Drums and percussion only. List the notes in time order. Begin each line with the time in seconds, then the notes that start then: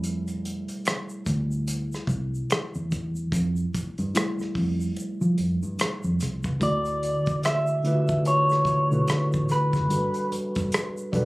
0.04 closed hi-hat, shaker
0.28 closed hi-hat, shaker
0.45 closed hi-hat
0.68 closed hi-hat, shaker
0.85 finger snap, cross-stick, closed hi-hat, shaker
1.09 shaker
1.26 kick, closed hi-hat, shaker
1.51 shaker
1.67 closed hi-hat, shaker
1.92 cross-stick, shaker
2.07 kick, closed hi-hat, shaker
2.35 shaker
2.50 finger snap, cross-stick, closed hi-hat, shaker
2.75 shaker
2.92 kick, closed hi-hat, shaker
3.16 shaker
3.32 kick, closed hi-hat, shaker
3.56 shaker
3.74 kick, closed hi-hat, shaker
3.98 closed hi-hat, shaker
4.15 finger snap, cross-stick, closed hi-hat, shaker
4.39 cross-stick, shaker
4.55 kick, open hi-hat
4.81 shaker
4.96 closed hi-hat, shaker
5.22 shaker
5.38 closed hi-hat
5.63 shaker
5.79 finger snap, cross-stick, closed hi-hat, shaker
6.03 shaker
6.20 cross-stick, closed hi-hat, shaker
6.43 kick, shaker
6.61 kick, closed hi-hat, shaker
6.85 closed hi-hat, shaker
7.03 closed hi-hat, shaker
7.26 kick, closed hi-hat, shaker
7.43 finger snap, cross-stick, closed hi-hat, shaker
7.67 shaker
7.85 closed hi-hat
8.08 kick, shaker
8.25 closed hi-hat, shaker
8.50 cross-stick, shaker
8.65 kick, closed hi-hat, shaker
8.92 shaker
9.07 finger snap, cross-stick, closed hi-hat, shaker
9.33 kick, shaker
9.49 cross-stick, closed hi-hat, shaker
9.73 kick, cross-stick, shaker
9.90 closed hi-hat, shaker
10.14 closed hi-hat, shaker
10.32 closed hi-hat, shaker
10.55 kick, closed hi-hat, shaker
10.72 finger snap, cross-stick, closed hi-hat, shaker
10.97 shaker
11.13 kick, closed hi-hat